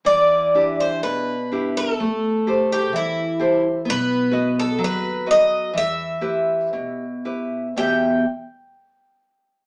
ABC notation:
X:1
M:2/4
L:1/16
Q:1/4=62
K:Em
V:1 name="Twelve-string acoustic guitar"
d3 c B3 A- | A3 G E3 z | B3 A B2 ^d2 | e6 z2 |
g2 z6 |]
V:2 name="Nylon-string guitar"
E,2 [DEG]2 B,,2 [DEG]2 | A,2 [GAc]2 E,2 [GAc]2 | B,2 [FB^d]2 F,2 [FBd]2 | E,2 [EGB]2 B,,2 [EGB]2 |
[E,,B,,B,EGe]2 z6 |]
V:3 name="Upright bass" clef=bass
E,,4 B,,,4 | A,,,4 E,,4 | B,,,4 ^D,,4 | E,,4 B,,,4 |
E,,2 z6 |]